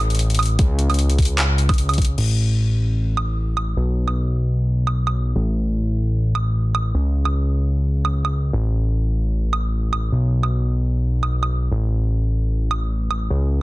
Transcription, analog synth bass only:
Already playing: A1
0.59 C#2
2.18 A1
3.77 B1
5.36 A1
6.95 C#2
8.53 A1
10.12 B1
11.71 A1
13.30 C#2

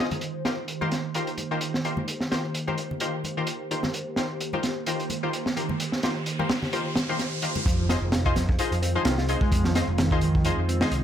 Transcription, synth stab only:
0.45 D#3 F4 G4 A#4 C5
0.81 D#3 F4 G4 A#4 C5
1.15 D#3 F4 G4 A#4 C5
1.51 D#3 F4 G4 A#4 C5
1.85 D#3 F4 G4 A#4 C5
2.31 D#3 F4 G4 A#4 C5
2.67 D#3 F4 G4 A#4 C5
3.01 D#3 F4 G4 A#4 C5
3.37 D#3 F4 G4 A#4 C5
3.71 D#3 F4 G4 A#4 C5
4.17 D#3 F4 G4 A#4 C5
4.53 D#3 F4 G4 A#4 C5
4.87 D#3 F4 G4 A#4 C5
5.23 D#3 F4 G4 A#4 C5
5.56 D#3 F4 G4 A#4 C5
6.03 D#3 F4 G4 A#4 C5
6.39 D#3 F4 G4 A#4 C5
6.73 D#3 F4 G4 A#4 C5
7.09 D#3 F4 G4 A#4 C5
7.43 D#3 F4 G4 A#4 C5
7.89 D#4 F4 G#4 C5
8.25 D#4 F4 G#4 C5
8.59 D#4 F4 G#4 C5
8.95 D#4 F4 G#4 C5
9.29 D#4 F4 G#4 C5
9.75 D#4 F4 G#4 C5
10.12 D#4 F4 G#4 C5
10.45 D#4 F4 G#4 C5
10.81 D#4 F4 G#4 C5

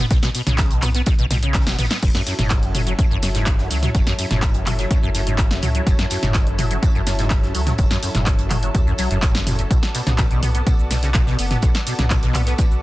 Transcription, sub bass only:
0.11 B1
0.47 B1
1.19 B1
1.67 F#1
1.79 A1
2.03 F#1
2.39 F#1
3.11 F#1
3.71 C#2
3.95 F#1
4.31 F#1
5.03 F#1
5.63 C#2
5.87 F#1
6.23 F#1
6.95 F#1
7.55 C#2
7.79 F#1
8.15 F#1
8.75 C#2
8.99 B1
9.11 F#1
9.71 B1
10.07 B1
10.79 B1
11.39 F#1
11.63 B1
11.99 B1
12.71 B1

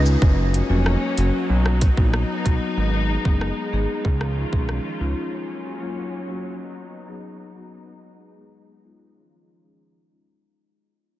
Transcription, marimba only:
0.53 C#4 F#4
0.69 F#3 A#3 C#4 F#4
1.17 F#3 A#3 C#4 F#4
1.81 D#4 F#4
1.97 F#3 B3 D#4 F#4
2.45 F#3 B3 D#4 F#4
3.09 D#4 G#4
3.25 G#3 B3 D#4 G#4
3.73 G#3 B3 D#4 G#4
4.37 D#4 F4
4.52 G#3 C#4 D#4 G#4
5.00 G#3 C#4 D#4 F4
5.64 C#4 F#4
5.80 F#3 A#3 C#4 F4
6.28 F#3 A#3 C#4 F#4
6.92 D#4 F#4
7.08 F#3 B3 D#4 G#4
7.56 F#3 B3 D#4 F#4
8.19 D#4 G#4
8.36 G#3 B3 D#4 G#4
8.84 G#3 B3 D#4 F4
9.47 D#4 F4
9.63 G#3 C#4 D#4 G#4
10.11 G#3 C#4 D#4 F4

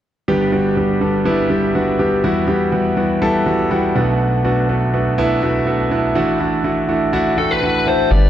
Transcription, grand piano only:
0.28 G1 G2 G3 B3 D4 G4
0.52 G3 B3 D4 F#4
0.77 G3 B3 D4 G4
1.01 G3 B3 D4 A4
1.25 G3 B3 D4 E4
1.50 G3 B3 D4 G4
1.75 G3 B3 D4 F#4
1.99 G3 B3 D4 G4
2.24 E2 E3 G3 B3 E4 F#4
2.48 G3 B3 E4 G4
2.72 G3 B3 E4 F#4
2.97 G3 B3 E4 F#4
3.22 G3 B3 E4 A4
3.46 G3 B3 E4 F#4
3.71 G3 B3 E4 F#4 G5
3.95 B1 B2 A3 B3 D4 F#4
4.04 F#5
4.44 A3 B3 D4 F#4
4.69 A3 B3 D4 F#4
4.93 A3 B3 D4 F#4
5.18 A3 B3 D4 E4
5.42 A3 B3 D4 F#4
5.66 A3 B3 D4 F#4
5.91 A3 B3 D4 E4
6.15 A1 A2 A3 D4 E4 F#4
6.40 A3 D4 E4 F#4
6.64 A3 D4 E4 F#4
6.89 A3 D4 E4 F#4
7.13 A3 D4 E4 F#4
7.38 A3 D4 E4 F#4 G5
7.62 A3 D4 E4 F#4 F#5
7.86 A3 D4 E4 A4 E5
8.11 G2 G3 B3 D4 G4

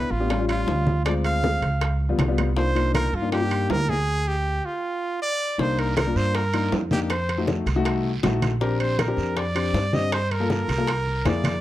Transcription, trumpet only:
Already playing: B4
0.11 F4
0.49 F4
1.05 D5
1.25 F5
2.57 C5
2.95 A#4
3.15 F4
3.33 G4
3.71 A#4
3.89 G#4
4.28 G4
4.65 F4
5.22 D5
5.60 C5
5.79 A#4
5.97 A#4
6.17 C5
6.35 A#4
6.92 G4
7.10 C5
8.61 A#4
8.80 C5
8.99 A#4
9.37 D5
9.94 D#5
10.13 C5
10.31 A#4
10.51 A#4
11.27 D5

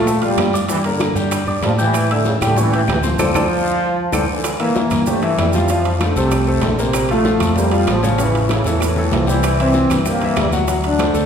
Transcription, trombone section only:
Already playing: A3
0.25 G3
0.70 E3
0.86 D3
1.65 F3
1.80 E3
2.12 D3
2.28 C#3
2.44 D3
2.59 E3
2.75 E3
2.91 E3
3.07 F3
4.16 E3 F3
4.31 D3 E3
4.60 A#3
5.07 A3
5.38 G3
5.71 F3
6.02 D3
6.17 C3
6.64 D3
6.80 C3
7.11 A3
7.58 G3
7.90 F3
8.21 E3
8.52 C#3
8.68 A2
9.15 F3
9.30 E3
9.61 C4
10.08 A#3
10.40 G3
10.86 D4

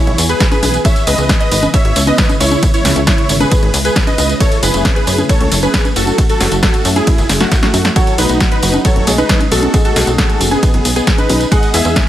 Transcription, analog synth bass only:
0.07 B1
0.18 E2
0.63 B1
1.07 C#2
1.18 C#2
1.52 G#1
1.85 G#1
1.96 C#2
2.40 C#2
2.85 C#2
2.96 C#2
3.29 G#1
3.63 G#1
3.74 C#2
4.18 C#2
4.63 F#1
4.74 F#1
5.07 F#2
5.41 C#2
5.52 F#1
5.96 F#1
6.40 F#1
6.52 F#1
6.85 F#2
7.18 F#1
7.29 F#1
7.74 F#2
8.18 B1
8.29 B1
8.63 F#1
8.96 F#1
9.07 B1
9.51 B1
9.96 B1
10.07 B1
10.41 F#1
10.74 F#1
10.85 B1
11.30 B1
11.74 E2
11.85 E2

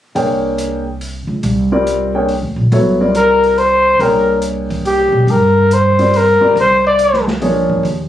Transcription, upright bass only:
0.15 C2
1.27 C#2
1.43 C2
2.42 D2
2.56 A#1
2.72 C2
3.99 C2
5.12 B1
5.27 G2
6.40 muted upright bass stroke
6.56 C2
7.83 D#2

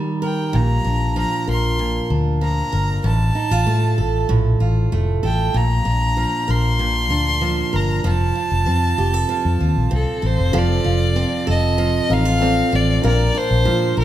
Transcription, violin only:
0.24 G5
0.55 A#5
1.18 A#5
1.50 C6
2.43 A#5
3.06 A5
5.25 G5
5.57 A#5
6.50 C6
7.76 A#5
8.07 A5
9.95 A4
10.26 C5
10.58 D5
11.50 D#5
12.13 F5
12.75 D5
13.06 D5
13.37 C5
13.99 A#4

